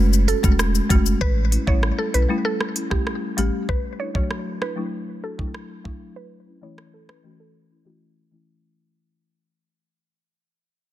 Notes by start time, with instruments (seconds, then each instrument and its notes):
Already playing: sub bass F#1
0.13 shaker
0.28 marimba C#4 F#4, synth pluck A4, closed hi-hat, shaker
0.43 sub bass E1, marimba G#3 A3 C#4 F#4, kick, shaker
0.59 cross-stick, shaker
0.75 shaker
0.90 sub bass F#1, marimba G#3 A3 C#4 F#4, kick, closed hi-hat, shaker
1.06 shaker
1.21 sub bass A1, synth pluck B4, kick
1.51 marimba C#4 E4, closed hi-hat
1.67 sub bass A1, marimba G3 A3 C#4 E4, synth pluck C#5, kick
1.83 cross-stick
1.98 synth pluck A4
2.13 sub bass B1, marimba C#4 E4, synth pluck B4, closed hi-hat
2.29 marimba G3 A3 C#4 E4
2.45 synth pluck A4
2.61 cross-stick
2.75 marimba C#4 E4, closed hi-hat
2.91 marimba G3 A3 C#4 E4, synth pluck G4, kick, cross-stick
3.07 cross-stick
3.37 sub bass A1, marimba G3 A3 C#4 G4, closed hi-hat
3.69 synth pluck B4, kick
3.99 marimba D4 E4, synth pluck C#5
4.14 marimba F#3 A3 D4 F#4, synth pluck C#5, kick
4.31 cross-stick
4.60 marimba D4 E4, synth pluck B4, cross-stick
4.76 marimba F#3 A3 D4 E4
5.22 marimba D4 F#4, synth pluck A4
5.38 marimba F#3 A3 D4 E4, kick
5.54 cross-stick
5.84 marimba F#3 A3 D4 E4, kick
6.16 synth pluck B4
6.46 marimba C#4 E4
6.62 marimba E3 A3 C#4 E4, synth pluck C#5
6.78 cross-stick
6.94 synth pluck A4
7.08 marimba C#4 E4, synth pluck B4, cross-stick
7.23 marimba E3 A3 C#4 F#4
7.40 synth pluck A4
7.70 marimba C#4 E4
7.85 marimba E3 A3 C#4 E4, synth pluck F#4
8.32 marimba E3 A3 C#4 E4